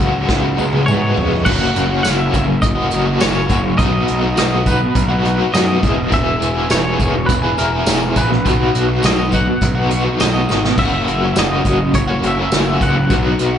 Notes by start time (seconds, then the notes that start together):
Already playing: C#3 F#3 G#3 F#4
0.00 C#2, kick, tambourine
0.27 C#2 B3, kick, snare
0.57 C#2 G#3, high tom, tambourine
0.73 high tom
0.85 G#2 B3 C#5, mid tom, tambourine
1.14 G#3, floor tom
1.19 F2
1.32 floor tom
1.44 F#1 F#2 C#3 F#3 A#3 C#4 F#4 F#5, kick, crash, tambourine
1.76 F#1, closed hi-hat, tambourine
1.87 F#3 A#3 C#4 F#4
2.01 F#2 C#3 F#3 A#3 C#4 F#4 E5, closed hi-hat, tambourine
2.05 F#1, snare
2.31 F#1 F#3 A#3 C#4 F#4, kick, closed hi-hat, tambourine
2.45 muted overdriven electric guitar stroke
2.62 F#1 D#5, kick, closed hi-hat, tambourine
2.75 F#3 A#3 C#4 F#4
2.90 F#1 F#3 A#3 C#4 F#4, closed hi-hat, tambourine
3.05 F#3 A#3 C#4 F#4
3.18 F#2 C#3 F#3 A#3 C#4 F#4 C#5, snare, closed hi-hat, tambourine
3.23 F#1
3.48 F#1 F#3 A#3 C#4 F#4, kick, closed hi-hat, tambourine
3.63 muted overdriven electric guitar stroke
3.77 B1 B2 F#3 B3 D#4 F#4 D#5, kick, closed hi-hat, tambourine
4.08 B1, closed hi-hat, tambourine
4.21 B3 D#4 F#4
4.36 B2 F#3 B3 D#4 F#4 D#5, snare, closed hi-hat, tambourine
4.40 B1
4.66 F#3 B3 D#4 F#4 B4, kick, closed hi-hat, tambourine
4.81 muted overdriven electric guitar stroke
4.95 B1, kick, closed hi-hat, tambourine
5.09 B3 D#4 F#4
5.22 F#3 B3 D#4 F#4, closed hi-hat
5.36 D#4 F#4
5.41 B3
5.51 F#2 B2 F#3 B3 D#4 F#4 D#5, closed hi-hat, tambourine
5.55 snare
5.80 E1 E2 B2 E3 B3 E4 G#4, kick, closed hi-hat
5.97 muted overdriven electric guitar stroke
6.08 E2 B2 E3 B3 E4, kick, closed hi-hat
6.13 E1 G#4 E5, tambourine
6.42 E1, closed hi-hat, tambourine
6.54 E3 B3 E4 G#4
6.68 E1 E2 B2 E3 B3 E4 G#4 C#5, snare, closed hi-hat, tambourine
6.98 E1 E3 B3 E4 G#4, kick, closed hi-hat, tambourine
7.14 muted overdriven electric guitar stroke
7.26 E1 B4, kick, closed hi-hat, tambourine
7.42 E3 B3 E4 G#4
7.56 E1 E3 B3 E4 G#4 A#4, closed hi-hat, tambourine
7.70 E3 B3 E4 G#4
7.86 E1 E2 B2 E3 B3 E4 G#4, snare, closed hi-hat, tambourine
8.15 A#1 E3 B3 E4 G#4 B4, kick, closed hi-hat, tambourine
8.30 muted overdriven electric guitar stroke, snare
8.45 B1 B2 F#3 B3 D#4 F#4, kick, closed hi-hat, tambourine
8.74 B1, closed hi-hat, tambourine
8.88 B3 D#4 F#4
9.02 B1 B2 F#3 B3 D#4 F#4 D#5, snare, closed hi-hat, tambourine
9.30 F#3 B3 D#4 F#4 F#5, kick, closed hi-hat, tambourine
9.47 muted overdriven electric guitar stroke
9.61 B1, kick, closed hi-hat, tambourine
9.75 B3 D#4 F#4
9.88 F#3 B3 D#4 F#4, closed hi-hat, tambourine
10.05 B3 D#4 F#4
10.19 B1 B2 F#3 B3 D#4 F#4 D#5, snare, closed hi-hat, tambourine
10.48 G#1 F#3 B3 D#4, snare, tambourine
10.52 F#4
10.64 muted overdriven electric guitar stroke, snare
10.78 F#1 F#2 C#3 F#3 A#3 C#4 E5, kick, tambourine, crash
10.82 F#4
11.07 F#1, closed hi-hat, tambourine
11.22 F#3 A#3 C#4 F#4
11.36 F#1 F#2 C#3 F#3 A#3 D#5, snare, closed hi-hat, tambourine
11.40 C#4 F#4
11.65 F#1 F#3 A#3 C#4 F#4, kick, closed hi-hat, tambourine
11.79 muted overdriven electric guitar stroke
11.94 F#1 C#5, kick, closed hi-hat, tambourine
12.07 A#3 C#4 F#4
12.11 F#3
12.23 F#1 F#3 A#3 C#4 F#4, closed hi-hat, tambourine
12.27 E5
12.38 F#3 A#3 C#4 F#4
12.51 F#1 F#2 C#3 F#3 A#3, snare, closed hi-hat, tambourine
12.54 C#4 F#4, tambourine
12.81 C#2 F#3 A#3 C#4 F#4 F#5, kick, closed hi-hat, tambourine
12.97 muted overdriven electric guitar stroke
13.10 B1 B2 F#3 B3 D#4, kick, closed hi-hat, tambourine
13.15 F#4
13.39 B1, closed hi-hat, tambourine
13.54 F#4